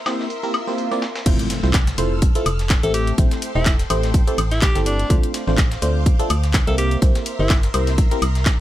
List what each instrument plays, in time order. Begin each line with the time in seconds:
Already playing: string machine A#4 E5 C6
0.06 fm electric piano A#3 C4 E4 G4 C5, snare, closed hi-hat, high woodblock
0.19 snare
0.30 closed hi-hat, swell
0.43 fm electric piano A#3 C4 E4 G4 A#4
0.54 closed hi-hat, high woodblock
0.67 fm electric piano A#3 C4 E4 G4 C5, snare
0.78 closed hi-hat
0.91 fm electric piano A#3 C4 E4 G4 D5, snare
1.02 snare, closed hi-hat
1.16 snare, closed hi-hat
1.26 fm bass F1, fm electric piano A3 C4 E4 F4 C5, string machine A4 E6 F6, kick, closed hi-hat, crash, impact
1.39 closed hi-hat
1.50 snare, closed hi-hat, open hi-hat
1.63 fm bass C2, fm electric piano A3 C4 E4 F4 C5, snare
1.74 kick, snare, clap, closed hi-hat
1.87 snare, closed hi-hat
1.98 fm bass F1, fm electric piano A3 C4 E4 F4 C5, closed hi-hat, open hi-hat
2.22 kick, closed hi-hat
2.35 fm electric piano A3 C4 E4 F4 A4, closed hi-hat
2.46 fm bass F1, closed hi-hat, open hi-hat, high woodblock
2.59 snare, closed hi-hat
2.70 kick, snare, clap, closed hi-hat
2.83 fm bass A1, fm electric piano A3 C4 E4 G4 A4, alto saxophone A4, closed hi-hat
2.94 alto saxophone G4, string machine A4 G5 C6, closed hi-hat, open hi-hat
3.07 closed hi-hat
3.18 fm bass A1, fm electric piano A3 C4 E4 G4 C5, kick, closed hi-hat
3.31 snare, closed hi-hat
3.42 closed hi-hat, open hi-hat
3.55 fm bass E1, fm electric piano A3 C4 E4 G4 C5, alto saxophone E4
3.66 kick, snare, clap, closed hi-hat
3.79 snare, closed hi-hat
3.90 fm bass A1, fm electric piano A3 C4 E4 G4 C5, closed hi-hat, open hi-hat, high woodblock
4.03 snare, open hi-hat
4.14 kick, closed hi-hat
4.27 fm electric piano A3 C4 E4 G4 A4, closed hi-hat
4.38 fm bass A1, closed hi-hat, open hi-hat, high woodblock
4.51 alto saxophone E4, snare, closed hi-hat
4.62 alto saxophone G4, kick, snare, clap, closed hi-hat
4.75 fm bass G1, fm electric piano A3 C4 E4 G4 A4, snare, closed hi-hat
4.86 alto saxophone D4, closed hi-hat, open hi-hat
4.99 closed hi-hat
5.10 fm bass D2, fm electric piano A3 C4 D4 F4 C5, string machine C5 F5 D6, kick, closed hi-hat
5.23 closed hi-hat
5.34 snare, closed hi-hat, open hi-hat
5.47 fm bass A1, fm electric piano A3 C4 D4 F4 C5, snare
5.58 kick, snare, clap, closed hi-hat
5.71 snare, closed hi-hat
5.82 fm bass D2, fm electric piano A3 C4 D4 F4 C5, closed hi-hat, open hi-hat
6.06 kick, closed hi-hat
6.19 fm electric piano A3 C4 D4 F4 A4, closed hi-hat
6.30 fm bass D2, closed hi-hat, open hi-hat, high woodblock
6.43 snare, closed hi-hat
6.54 kick, snare, clap, closed hi-hat
6.67 fm bass C2, fm electric piano A#3 C4 E4 G4 A#4, alto saxophone A4, closed hi-hat
6.78 alto saxophone G4, string machine A#4 E5 C6, closed hi-hat, open hi-hat
6.91 closed hi-hat
7.02 fm bass C2, fm electric piano A#3 C4 E4 G4 C5, kick, closed hi-hat
7.15 snare, closed hi-hat
7.26 closed hi-hat, open hi-hat
7.39 fm bass G1, fm electric piano A#3 C4 E4 G4 C5, alto saxophone E4
7.50 kick, snare, clap, closed hi-hat
7.63 snare, closed hi-hat
7.74 fm bass C2, fm electric piano A#3 C4 E4 G4 C5, closed hi-hat, open hi-hat, high woodblock
7.87 snare, open hi-hat
7.98 kick, closed hi-hat
8.11 fm electric piano A#3 C4 E4 G4 A#4, closed hi-hat
8.22 fm bass C2, closed hi-hat, open hi-hat, high woodblock
8.35 snare, closed hi-hat
8.46 kick, snare, clap, closed hi-hat